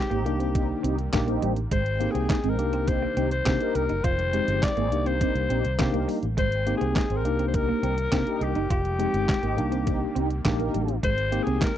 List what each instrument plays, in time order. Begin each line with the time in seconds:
Already playing: analog synth pad D#3 F3 G#3 G4, alto saxophone G4
0.10 fingered electric bass G#1, clean electric guitar A#3, analog polysynth C4 D#4 G4, closed hi-hat
0.25 fingered electric bass C2, analog synth pad C3 G3 A#3, tine electric piano A#3 D4 D#4 G4, muted clean electric guitar stroke, closed hi-hat
0.40 clean electric guitar C4, closed hi-hat
0.55 analog polysynth C4 D#4 G4, kick, closed hi-hat
0.83 fingered electric bass C2, clean electric guitar C4, analog polysynth C4 D#4 G4, closed hi-hat
0.99 closed hi-hat
1.13 fingered electric bass A#1, tine electric piano A#3 D4 D#4 G4, muted clean electric guitar stroke, kick, snare, clap, closed hi-hat
1.27 clean electric guitar A#3, analog polysynth C4 D#4 G4, closed hi-hat
1.42 fingered electric bass A1, clean electric guitar G3, closed hi-hat
1.56 closed hi-hat
1.71 fingered electric bass G#1, clean electric guitar G#3, analog synth pad G#3 C4 G5, alto saxophone C5, kick, closed hi-hat
1.86 closed hi-hat
2.00 tine electric piano A#3 C4 D#4 G4, muted clean electric guitar stroke, closed hi-hat
2.11 fingered electric bass C2, clean electric guitar C4, alto saxophone G#4
2.15 closed hi-hat
2.29 clean electric guitar D#4, kick, snare, clap, closed hi-hat
2.44 fingered electric bass G#1, analog polysynth G#3 C4 D#4, muted clean electric guitar stroke, closed hi-hat
2.49 alto saxophone A#4
2.58 fingered electric bass C2, analog synth pad C3 D#3 G3 A#3, tine electric piano A#3 D4 D#4 G4, closed hi-hat
2.73 clean electric guitar C4, closed hi-hat
2.88 analog polysynth C4 D#4 G4, alto saxophone C5, muted clean electric guitar stroke, kick, closed hi-hat
3.02 clean electric guitar A#3
3.17 fingered electric bass C2, clean electric guitar C4, analog polysynth C4 D#4 G4, closed hi-hat
3.31 alto saxophone C5, closed hi-hat
3.45 fingered electric bass C3, tine electric piano A#3 D4 D#4 G4, clean electric guitar C4, kick, snare, clap, closed hi-hat
3.60 analog polysynth D#4 G4 A#4, closed hi-hat
3.75 fingered electric bass C2, alto saxophone A#4, muted clean electric guitar stroke, closed hi-hat
3.89 fingered electric bass F#1, clean electric guitar D#4, closed hi-hat
4.04 fingered electric bass F1, analog synth pad F3 G#3 G4, clean electric guitar F4, alto saxophone C5, kick, closed hi-hat
4.19 muted clean electric guitar stroke, closed hi-hat
4.33 tine electric piano G#3 C4 D#4 G4, clean electric guitar G#3, closed hi-hat
4.48 fingered electric bass G1, closed hi-hat
4.63 alto saxophone D5, kick, snare, clap, closed hi-hat
4.77 fingered electric bass G#1, clean electric guitar A#3, analog polysynth C4 D#4 G#4, closed hi-hat
4.92 fingered electric bass C2, analog synth pad C3 G3 A#3, tine electric piano A#3 D4 D#4 G4, muted clean electric guitar stroke, closed hi-hat
5.06 clean electric guitar C4, alto saxophone C5, closed hi-hat
5.21 analog polysynth C4 D#4 G4, kick, closed hi-hat
5.35 fingered electric bass C2, closed hi-hat
5.50 fingered electric bass A#1, clean electric guitar C4, analog polysynth C4 D#4 G4, closed hi-hat
5.65 fingered electric bass C2, closed hi-hat
5.79 fingered electric bass C3, tine electric piano A#3 D4 D#4 G4, muted clean electric guitar stroke, kick, snare, clap, closed hi-hat
5.93 fingered electric bass C2, clean electric guitar A#3, analog polysynth D#4 G4 A#4, closed hi-hat
6.08 clean electric guitar G3, open hi-hat
6.23 fingered electric bass A1, closed hi-hat
6.37 fingered electric bass G#1, clean electric guitar G#3, analog synth pad G#3 C4 G5, alto saxophone C5, kick, closed hi-hat
6.52 closed hi-hat
6.66 tine electric piano A#3 C4 D#4 G4, muted clean electric guitar stroke, closed hi-hat
6.77 clean electric guitar C4, alto saxophone G#4
6.81 fingered electric bass C2, closed hi-hat
6.96 clean electric guitar D#4, kick, snare, clap, closed hi-hat
7.10 fingered electric bass G#1, analog polysynth C4 G#4 C5, muted clean electric guitar stroke, closed hi-hat
7.16 alto saxophone A#4
7.25 fingered electric bass C2, analog synth pad C3 D#3 G3 A#3, tine electric piano A#3 D4 D#4 G4, closed hi-hat
7.39 clean electric guitar C4, closed hi-hat
7.48 alto saxophone C5
7.54 analog polysynth D#4 G4 A#4, alto saxophone A#4, muted clean electric guitar stroke, kick, closed hi-hat
7.69 clean electric guitar A#3
7.83 fingered electric bass C2, clean electric guitar C4, analog polysynth D#4 G4 A#4, closed hi-hat
7.98 closed hi-hat
8.12 fingered electric bass C3, tine electric piano A#3 D4 D#4 G4, clean electric guitar C4, kick, snare, clap, closed hi-hat
8.27 analog polysynth D#4 G4 A#4, closed hi-hat
8.41 fingered electric bass C2, alto saxophone G4, muted clean electric guitar stroke, closed hi-hat
8.55 fingered electric bass F#1, clean electric guitar D#4, closed hi-hat
8.70 fingered electric bass F1, analog synth pad F3 G#3 G4, clean electric guitar F4, alto saxophone G4, kick, closed hi-hat
8.85 muted clean electric guitar stroke, closed hi-hat
8.99 tine electric piano G#3 C4 D#4 G4, clean electric guitar G#3, closed hi-hat
9.14 fingered electric bass G1, closed hi-hat
9.29 kick, snare, clap, closed hi-hat
9.43 fingered electric bass G#1, clean electric guitar A#3, analog polysynth C4 D#4 G4, closed hi-hat
9.57 fingered electric bass C2, analog synth pad C3 G3 A#3, tine electric piano A#3 D4 D#4 G4, muted clean electric guitar stroke, closed hi-hat
9.72 clean electric guitar C4, closed hi-hat
9.87 analog polysynth C4 D#4 G4, kick, closed hi-hat
10.15 fingered electric bass C2, clean electric guitar C4, analog polysynth C4 D#4 G4, closed hi-hat
10.30 closed hi-hat
10.45 fingered electric bass A#1, tine electric piano A#3 D4 D#4 G4, muted clean electric guitar stroke, kick, snare, clap, closed hi-hat
10.59 clean electric guitar A#3, analog polysynth D#4 G4 A#4, closed hi-hat
10.74 fingered electric bass A1, clean electric guitar G3, closed hi-hat
10.88 closed hi-hat
11.03 fingered electric bass G#1, clean electric guitar G#3, analog synth pad G#3 C4 G4, alto saxophone C5, kick, closed hi-hat
11.18 closed hi-hat
11.32 tine electric piano A#3 C4 D#4 G4, muted clean electric guitar stroke, closed hi-hat
11.43 fingered electric bass C2, clean electric guitar C4, alto saxophone G#4, closed hi-hat
11.61 clean electric guitar D#4, alto saxophone A#4, kick, snare, clap, closed hi-hat